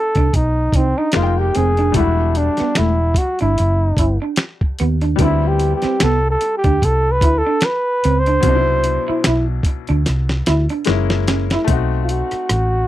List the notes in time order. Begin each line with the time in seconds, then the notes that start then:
Already playing: D#3 A3 C4 D#4 A4
0.15 C2 D4, kick, closed hi-hat
0.33 B1 D#4, muted clean electric guitar stroke, kick, closed hi-hat
0.72 C2 C4 D#4, kick, closed hi-hat
0.98 D4 D#4
1.12 G#3 A#3 D#4 F4, finger snap, muted clean electric guitar stroke, snare, closed hi-hat
1.16 F1 F4
1.23 G5
1.39 G4
1.55 F1 C4 G#4, closed hi-hat
1.77 D4, closed hi-hat
1.92 E1 G3 A3 E4, kick, closed hi-hat
1.97 D4 E4 F#4
2.35 D4, muted clean electric guitar stroke, closed hi-hat
2.57 B3, muted fingered electric bass stroke, snare, closed hi-hat
2.75 E1 A3 E4, finger snap, snare, closed hi-hat
3.14 F#4, kick, closed hi-hat
3.19 muted clean electric guitar stroke
3.39 G1 D4 E4, closed hi-hat
3.58 F#1, muted clean electric guitar stroke, closed hi-hat
3.97 G1 E4, kick, closed hi-hat
4.22 D4
4.36 finger snap, muted clean electric guitar stroke, snare, closed hi-hat
4.61 kick
4.79 D#2 B3, closed hi-hat
5.01 D4, closed hi-hat
5.16 G3 B3, kick, closed hi-hat
5.20 D2 C4 D4 E4
5.48 G4
5.59 muted clean electric guitar stroke, closed hi-hat
5.75 G4
5.82 C4, muted fingered electric bass stroke, snare, closed hi-hat
6.00 C2 B3 A4, finger snap, snare, closed hi-hat
6.30 A4
6.41 muted clean electric guitar stroke, closed hi-hat
6.57 G4
6.64 D2 D4, kick, closed hi-hat
6.82 C2 A4, muted clean electric guitar stroke, kick, closed hi-hat
7.12 B4
7.21 D2 E4, kick, closed hi-hat
7.38 A4
7.47 D4
7.61 finger snap, muted clean electric guitar stroke, snare, closed hi-hat
7.65 B4
8.04 C#2 C4, closed hi-hat
8.19 C5
8.26 D4, closed hi-hat
8.40 C2 B2 F#3, kick, closed hi-hat
8.45 C4 D4
8.49 D#4
8.55 E4
8.84 muted clean electric guitar stroke, closed hi-hat
9.08 E4, muted fingered electric bass stroke
9.24 B1 E4, finger snap, snare, closed hi-hat
9.63 muted clean electric guitar stroke, kick, closed hi-hat
9.87 D2 D4, closed hi-hat
10.06 C2, muted clean electric guitar stroke, snare, closed hi-hat
10.29 snare
10.46 D2 E4, snare, closed hi-hat
10.69 D4, closed hi-hat
10.85 F#1 G#3 A#3 C#4, muted clean electric guitar stroke, snare, closed hi-hat
10.90 E4
11.10 snare
11.28 C#4, snare, closed hi-hat
11.50 E4, snare, closed hi-hat
11.64 A3 C4, kick, closed hi-hat
11.69 B1 D#4 F#4
12.04 F4
12.09 F#4, closed hi-hat
12.31 muted fingered electric bass stroke, cross-stick, closed hi-hat
12.49 A1, cross-stick, closed hi-hat